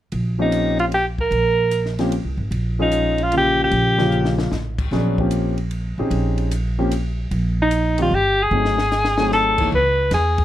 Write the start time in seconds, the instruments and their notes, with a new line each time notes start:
0.12 upright bass A#1, ride
0.39 grand piano F3 A#3 C4 C#4 G4, alto saxophone D#4
0.52 hi-hat pedal, ride
0.79 alto saxophone F4, ride
0.92 alto saxophone G4, ride
1.18 alto saxophone A#4, kick
1.31 upright bass A#1, ride
1.71 hi-hat pedal, ride
1.86 snare
1.99 grand piano F3 A#3 C4 C#4 G4, snare, ride
2.12 ride
2.24 upright bass C2
2.37 upright bass G#1
2.51 upright bass A#1, ride
2.79 grand piano F3 G#3 C#4 F4 G#4, alto saxophone D#4
2.92 hi-hat pedal, ride
3.18 ride
3.23 alto saxophone F4
3.32 grand piano C#3 F3 A#3 C#4 F4, ride
3.38 alto saxophone G4
3.64 alto saxophone G4
3.71 upright bass A#1, ride
3.98 grand piano C#3 F3 A#3 C#4 F4, snare
4.11 hi-hat pedal
4.25 snare
4.39 snare
4.52 upright bass A1, snare
4.79 kick, crash
4.91 upright bass A#1, grand piano F#3 B3 C#4 D4 G#4, snare
5.18 grand piano F3 A#3 C4 C#4 G4, kick
5.31 hi-hat pedal, ride
5.58 ride
5.71 ride
5.98 upright bass A1, grand piano C4 C#4 D#4 G4 G#4
6.10 upright bass A#1, ride
6.38 ride
6.51 hi-hat pedal, ride
6.79 grand piano F3 A#3 C4 C#4 G4
6.92 hi-hat pedal, ride
7.31 upright bass A#1, ride
7.62 alto saxophone D#4
7.71 hi-hat pedal, ride
7.98 grand piano D#3 G3 C4 D#4 G4, ride
8.02 alto saxophone F4
8.11 upright bass G1, alto saxophone G4
8.43 alto saxophone G#4
8.51 upright bass G#1, grand piano F#3 A3 C4 D#4 G#4
8.65 snare
8.78 snare
8.91 snare, hi-hat pedal
9.05 snare
9.18 grand piano F#3 A3 C4 D#4 G#4, snare
9.32 alto saxophone A4, snare
9.58 grand piano E3 A#3 D#4 G#4 C#5, kick, crash
9.72 upright bass C#2, alto saxophone B4
10.11 upright bass E2, alto saxophone G#4, snare, hi-hat pedal, ride
10.38 kick, ride